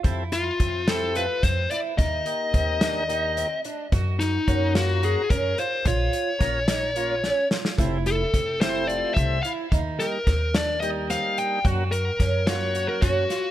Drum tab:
HH |x-x-x-x-x-x-x-|x-x-x-x-x-x-x-|x-x-x-x-x-x-x-|x-x-x-x-x-----|
SD |--o---o-------|------o-------|--o---o-------|----o-o---o-oo|
BD |o---o-----o---|o---o---------|o---o-----o---|o---o---------|

HH |x-x-x-x-x-x-x-|x-x-x-x-x-x-x-|x-x-x-x-x-x-x-|
SD |------o-------|--o-o-o---o---|----o-o---o-o-|
BD |o---o-----o---|o---o---------|o---o-----o---|